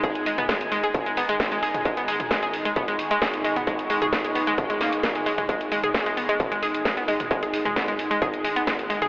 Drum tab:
HH |xxoxxxoxxxoxxxox|xxoxxxoxxxoxxxox|xxoxxxoxxxoxxxox|xxoxxxoxxxoxxxox|
SD |----o-------o---|----o-------o---|----o-----o-o---|----o-------o---|
T2 |---o----o------o|---o----o------o|---o----o------o|---o----o------o|
BD |o---o---o---o---|o---o---o---o---|o---o---o---o---|o---o---o---o---|

HH |xxoxxxoxxxoxxxox|
SD |----o-------o---|
T2 |---o----o------o|
BD |o---o---o---o---|